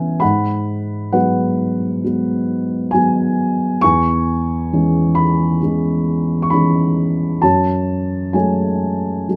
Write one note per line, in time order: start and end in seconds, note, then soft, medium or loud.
0.00 0.18 C#2 medium
0.00 0.24 E3 soft
0.00 0.23 B3 soft
0.00 0.24 C#4 soft
0.00 0.18 B4 soft
0.00 0.24 E5 medium
0.00 0.21 F#5 medium
0.00 0.24 G#5 medium
0.20 3.79 G#2 medium
0.20 1.11 F#5 medium
0.20 1.16 B5 medium
1.12 2.01 F#3 soft
1.12 2.02 G#3 soft
1.12 2.02 B3 soft
1.12 2.89 B4 soft
1.12 2.98 F#5 medium
2.04 2.90 F#3 soft
2.04 2.91 G#3 soft
2.04 2.91 B3 soft
2.91 3.80 F#3 soft
2.91 3.80 G#3 soft
2.91 3.82 G#5 medium
2.95 3.81 B3 soft
3.81 7.39 E2 medium
3.81 5.58 G#5 medium
3.81 5.20 C#6 loud
4.73 5.59 E3 soft
4.73 5.59 G#3 soft
4.73 5.59 C#4 medium
5.15 6.47 B5 medium
5.62 6.49 E3 soft
5.62 6.50 G#3 soft
5.62 6.50 C#4 soft
6.42 6.50 C#6 medium
6.50 7.41 E3 soft
6.50 7.41 G#3 soft
6.50 7.41 C#4 soft
6.50 7.45 B5 medium
7.42 9.36 F#2 medium
7.42 8.34 C#5 medium
7.42 8.36 A5 medium
8.33 9.26 F#3 soft
8.33 9.26 G#3 soft
8.33 9.26 A3 soft
8.33 9.36 C#5 soft
8.33 9.36 G#5 medium
9.29 9.36 F#3 soft
9.29 9.36 G#3 soft
9.29 9.36 A3 soft